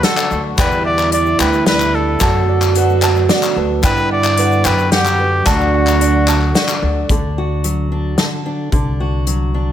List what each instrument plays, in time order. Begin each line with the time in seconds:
Already playing: tonewheel organ D3 F#3 A3 D4 A4, french horn F#4, ukulele D5 A5
0.03 twelve-string acoustic guitar D3 A3 D4 F#4, trumpet A4, ukulele F#5, snare, closed hi-hat, shaker
0.17 clap, shaker
0.30 upright bass D2, twelve-string acoustic guitar A3 D4 F#4, ukulele D5, shaker
0.57 twelve-string acoustic guitar E2 B2 E3 G3 D4 E4, upright bass E2, tonewheel organ G3 B3 E4 G4, french horn E4, trumpet B4, ukulele G5, kick, clap, closed hi-hat, shaker
0.71 shaker
0.86 trumpet D5, ukulele E5
0.98 clap, shaker
1.12 twelve-string acoustic guitar E3 G3 D4 E4, trumpet D5, ukulele D5, closed hi-hat
1.26 shaker
1.39 upright bass D2, twelve-string acoustic guitar E3 G3 D4 E4, trumpet B4, ukulele G5, clap, shaker
1.53 clap, shaker
1.66 twelve-string acoustic guitar E3 G3 D4 E4, trumpet B4, ukulele E5, snare, closed hi-hat
1.80 clap, shaker
1.94 twelve-string acoustic guitar E3 G3 D4 E4, trumpet A4, ukulele D5
2.20 upright bass F#2, tonewheel organ F#3 A3 A4, twelve-string acoustic guitar F#3 B3 D4 A4, french horn F#4, ukulele A5, kick, clap, closed hi-hat, shaker
2.49 ukulele D5
2.62 clap, shaker
2.75 twelve-string acoustic guitar F#3 B3 D4 A4, ukulele B4, closed hi-hat
2.89 shaker
3.01 twelve-string acoustic guitar B3 D4 A4, ukulele A5, clap, shaker
3.16 clap, shaker
3.29 twelve-string acoustic guitar F#3 B3 D4 A4, ukulele D5, snare, closed hi-hat
3.43 clap, shaker
3.55 upright bass D2, twelve-string acoustic guitar B3 D4 A4, ukulele B4
3.82 upright bass G2, tonewheel organ D3 G4, twelve-string acoustic guitar G3 B3 D4, french horn E4, trumpet B4, ukulele G5, kick, clap, closed hi-hat, shaker
3.97 shaker
4.11 trumpet D5, ukulele F#5
4.24 clap, shaker
4.37 twelve-string acoustic guitar G3 B3 D4 F#4, ukulele B4, closed hi-hat
4.52 shaker
4.64 upright bass F#2, twelve-string acoustic guitar B3 D4 F#4, trumpet B4, ukulele G5, clap, shaker
4.79 clap, shaker
4.91 twelve-string acoustic guitar G3 B3 D4 F#4, trumpet G4, ukulele F#5, snare, closed hi-hat
5.06 clap, shaker
5.18 twelve-string acoustic guitar B3 D4 F#4, ukulele B4
5.45 upright bass D2, twelve-string acoustic guitar D3 A3 D4 F#4, tonewheel organ F#3 A3 F#4 A4, french horn D4, trumpet F#4, ukulele A5, kick, clap, closed hi-hat, shaker
5.60 clap, shaker
5.74 ukulele F#5
5.87 clap, shaker
6.00 twelve-string acoustic guitar D3 A3 D4 F#4, ukulele D5, closed hi-hat
6.28 twelve-string acoustic guitar A3 D4 F#4, ukulele A5, clap, shaker
6.42 clap
6.54 twelve-string acoustic guitar D3 A3 D4 F#4, ukulele F#5, snare, closed hi-hat, shaker
6.68 clap, shaker
6.82 upright bass D2, ukulele D5
7.09 upright bass D2, steel-string acoustic guitar D3 D4, kick, closed hi-hat
7.38 steel-string acoustic guitar F#4
7.64 steel-string acoustic guitar F#3, closed hi-hat
7.92 steel-string acoustic guitar D4
8.18 steel-string acoustic guitar D3 A4, snare, closed hi-hat
8.46 steel-string acoustic guitar D4
8.72 upright bass C2, steel-string acoustic guitar D3 D4, kick, closed hi-hat
9.00 steel-string acoustic guitar F#4
9.27 steel-string acoustic guitar F#3, closed hi-hat
9.54 steel-string acoustic guitar D4